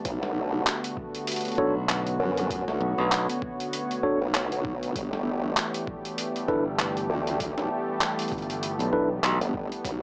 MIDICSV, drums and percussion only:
0, 0, Header, 1, 2, 480
1, 0, Start_track
1, 0, Tempo, 612245
1, 40, Time_signature, 4, 2, 24, 8
1, 7856, End_track
2, 0, Start_track
2, 0, Title_t, "Drums"
2, 39, Note_on_c, 9, 42, 84
2, 40, Note_on_c, 9, 36, 127
2, 118, Note_off_c, 9, 42, 0
2, 119, Note_off_c, 9, 36, 0
2, 178, Note_on_c, 9, 38, 52
2, 256, Note_off_c, 9, 38, 0
2, 521, Note_on_c, 9, 39, 127
2, 521, Note_on_c, 9, 42, 82
2, 600, Note_off_c, 9, 39, 0
2, 600, Note_off_c, 9, 42, 0
2, 660, Note_on_c, 9, 42, 55
2, 738, Note_off_c, 9, 42, 0
2, 760, Note_on_c, 9, 36, 115
2, 838, Note_off_c, 9, 36, 0
2, 898, Note_on_c, 9, 42, 52
2, 977, Note_off_c, 9, 42, 0
2, 998, Note_on_c, 9, 42, 84
2, 1032, Note_off_c, 9, 42, 0
2, 1032, Note_on_c, 9, 42, 66
2, 1068, Note_off_c, 9, 42, 0
2, 1068, Note_on_c, 9, 42, 55
2, 1103, Note_off_c, 9, 42, 0
2, 1103, Note_on_c, 9, 42, 45
2, 1138, Note_off_c, 9, 42, 0
2, 1138, Note_on_c, 9, 42, 36
2, 1162, Note_off_c, 9, 42, 0
2, 1162, Note_on_c, 9, 42, 29
2, 1189, Note_off_c, 9, 42, 0
2, 1189, Note_on_c, 9, 42, 24
2, 1217, Note_off_c, 9, 42, 0
2, 1217, Note_on_c, 9, 42, 20
2, 1240, Note_on_c, 9, 36, 108
2, 1295, Note_off_c, 9, 42, 0
2, 1318, Note_off_c, 9, 36, 0
2, 1481, Note_on_c, 9, 39, 124
2, 1481, Note_on_c, 9, 42, 78
2, 1560, Note_off_c, 9, 39, 0
2, 1560, Note_off_c, 9, 42, 0
2, 1620, Note_on_c, 9, 42, 35
2, 1698, Note_off_c, 9, 42, 0
2, 1861, Note_on_c, 9, 42, 38
2, 1940, Note_off_c, 9, 42, 0
2, 1961, Note_on_c, 9, 36, 126
2, 1964, Note_on_c, 9, 42, 80
2, 2039, Note_off_c, 9, 36, 0
2, 2042, Note_off_c, 9, 42, 0
2, 2101, Note_on_c, 9, 38, 47
2, 2180, Note_off_c, 9, 38, 0
2, 2444, Note_on_c, 9, 39, 125
2, 2444, Note_on_c, 9, 42, 81
2, 2523, Note_off_c, 9, 39, 0
2, 2523, Note_off_c, 9, 42, 0
2, 2583, Note_on_c, 9, 42, 50
2, 2662, Note_off_c, 9, 42, 0
2, 2682, Note_on_c, 9, 36, 116
2, 2760, Note_off_c, 9, 36, 0
2, 2824, Note_on_c, 9, 42, 53
2, 2902, Note_off_c, 9, 42, 0
2, 2925, Note_on_c, 9, 42, 86
2, 3004, Note_off_c, 9, 42, 0
2, 3065, Note_on_c, 9, 42, 36
2, 3143, Note_off_c, 9, 42, 0
2, 3162, Note_on_c, 9, 36, 65
2, 3241, Note_off_c, 9, 36, 0
2, 3405, Note_on_c, 9, 39, 117
2, 3405, Note_on_c, 9, 42, 78
2, 3483, Note_off_c, 9, 39, 0
2, 3483, Note_off_c, 9, 42, 0
2, 3544, Note_on_c, 9, 42, 34
2, 3622, Note_off_c, 9, 42, 0
2, 3644, Note_on_c, 9, 36, 118
2, 3722, Note_off_c, 9, 36, 0
2, 3785, Note_on_c, 9, 42, 36
2, 3863, Note_off_c, 9, 42, 0
2, 3885, Note_on_c, 9, 36, 124
2, 3886, Note_on_c, 9, 42, 79
2, 3963, Note_off_c, 9, 36, 0
2, 3965, Note_off_c, 9, 42, 0
2, 4022, Note_on_c, 9, 38, 47
2, 4100, Note_off_c, 9, 38, 0
2, 4364, Note_on_c, 9, 39, 117
2, 4364, Note_on_c, 9, 42, 76
2, 4443, Note_off_c, 9, 39, 0
2, 4443, Note_off_c, 9, 42, 0
2, 4503, Note_on_c, 9, 42, 49
2, 4581, Note_off_c, 9, 42, 0
2, 4605, Note_on_c, 9, 36, 109
2, 4683, Note_off_c, 9, 36, 0
2, 4744, Note_on_c, 9, 42, 49
2, 4822, Note_off_c, 9, 42, 0
2, 4845, Note_on_c, 9, 42, 83
2, 4923, Note_off_c, 9, 42, 0
2, 4985, Note_on_c, 9, 42, 35
2, 5063, Note_off_c, 9, 42, 0
2, 5084, Note_on_c, 9, 36, 107
2, 5163, Note_off_c, 9, 36, 0
2, 5324, Note_on_c, 9, 39, 117
2, 5324, Note_on_c, 9, 42, 73
2, 5402, Note_off_c, 9, 39, 0
2, 5402, Note_off_c, 9, 42, 0
2, 5463, Note_on_c, 9, 42, 35
2, 5542, Note_off_c, 9, 42, 0
2, 5701, Note_on_c, 9, 42, 36
2, 5779, Note_off_c, 9, 42, 0
2, 5802, Note_on_c, 9, 36, 121
2, 5804, Note_on_c, 9, 42, 77
2, 5881, Note_off_c, 9, 36, 0
2, 5882, Note_off_c, 9, 42, 0
2, 5940, Note_on_c, 9, 38, 51
2, 6019, Note_off_c, 9, 38, 0
2, 6279, Note_on_c, 9, 39, 118
2, 6279, Note_on_c, 9, 42, 74
2, 6358, Note_off_c, 9, 39, 0
2, 6358, Note_off_c, 9, 42, 0
2, 6419, Note_on_c, 9, 42, 47
2, 6443, Note_off_c, 9, 42, 0
2, 6443, Note_on_c, 9, 42, 39
2, 6491, Note_off_c, 9, 42, 0
2, 6491, Note_on_c, 9, 42, 30
2, 6521, Note_on_c, 9, 36, 107
2, 6525, Note_off_c, 9, 42, 0
2, 6525, Note_on_c, 9, 42, 27
2, 6570, Note_off_c, 9, 42, 0
2, 6570, Note_on_c, 9, 42, 22
2, 6599, Note_off_c, 9, 36, 0
2, 6603, Note_off_c, 9, 42, 0
2, 6603, Note_on_c, 9, 42, 18
2, 6663, Note_off_c, 9, 42, 0
2, 6663, Note_on_c, 9, 42, 49
2, 6741, Note_off_c, 9, 42, 0
2, 6764, Note_on_c, 9, 42, 81
2, 6843, Note_off_c, 9, 42, 0
2, 6901, Note_on_c, 9, 42, 37
2, 6979, Note_off_c, 9, 42, 0
2, 7000, Note_on_c, 9, 36, 63
2, 7078, Note_off_c, 9, 36, 0
2, 7241, Note_on_c, 9, 39, 110
2, 7241, Note_on_c, 9, 42, 72
2, 7320, Note_off_c, 9, 39, 0
2, 7320, Note_off_c, 9, 42, 0
2, 7380, Note_on_c, 9, 42, 33
2, 7459, Note_off_c, 9, 42, 0
2, 7479, Note_on_c, 9, 36, 112
2, 7558, Note_off_c, 9, 36, 0
2, 7620, Note_on_c, 9, 42, 35
2, 7698, Note_off_c, 9, 42, 0
2, 7719, Note_on_c, 9, 36, 118
2, 7723, Note_on_c, 9, 42, 76
2, 7798, Note_off_c, 9, 36, 0
2, 7801, Note_off_c, 9, 42, 0
2, 7856, End_track
0, 0, End_of_file